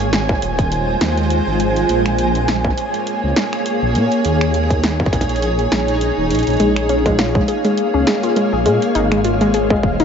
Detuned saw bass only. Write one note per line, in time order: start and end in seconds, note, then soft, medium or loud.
0.00 0.37 G#1 loud
0.42 0.96 D#1 medium
1.01 1.41 D#2 medium
1.47 1.84 G#1 loud
1.89 2.73 A#1 loud
3.23 3.33 C#2 medium
3.82 3.97 A#1 medium
3.95 4.08 A#2 loud
4.25 5.08 D#2 loud
5.13 5.67 A#1 medium
5.72 6.11 A#1 medium
6.18 6.32 D#1 loud
6.31 6.43 A#1 loud
6.47 6.57 A#1 medium
6.60 7.43 A#1 loud
7.94 8.04 C#2 medium
8.53 8.67 A#1 medium
8.66 8.78 A#2 loud
8.95 9.79 G#1 loud
9.83 10.05 D#1 medium